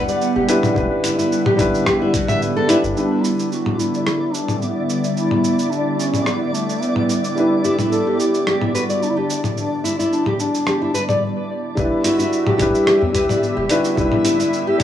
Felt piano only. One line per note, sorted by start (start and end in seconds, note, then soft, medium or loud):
0.00 0.47 G3 loud
0.00 0.48 D4 medium
0.00 0.49 E4 medium
0.00 0.49 B4 loud
0.47 0.72 G3 medium
0.47 0.73 D4 medium
0.47 0.73 E4 medium
0.47 0.73 B4 loud
0.74 1.55 G3 medium
0.74 1.55 D4 medium
0.74 1.56 E4 medium
0.78 1.57 B4 medium
1.57 2.65 G3 medium
1.57 2.65 D4 medium
1.57 2.66 E4 medium
1.57 2.67 B4 loud
2.68 2.93 G3 medium
2.68 2.93 D4 medium
2.68 2.93 E4 medium
2.68 2.94 B4 medium
2.95 7.33 G3 medium
2.95 7.33 D4 medium
2.95 7.34 E4 medium
2.99 7.35 B4 medium
7.35 11.21 G3 medium
7.35 11.22 D4 medium
7.35 11.23 E4 medium
7.39 11.23 B4 medium
11.75 12.56 G3 medium
11.75 12.56 D4 medium
11.75 12.57 E4 medium
11.79 12.58 B4 medium
12.58 13.66 G3 loud
12.58 13.66 D4 medium
12.58 13.67 E4 medium
12.58 13.68 B4 loud
13.69 13.94 G3 medium
13.69 13.94 D4 medium
13.69 13.95 E4 medium
13.69 13.95 B4 loud
13.95 14.76 G3 medium
13.95 14.76 D4 medium
13.95 14.77 E4 medium
14.00 14.78 B4 medium
14.78 14.83 G3 medium
14.78 14.83 D4 medium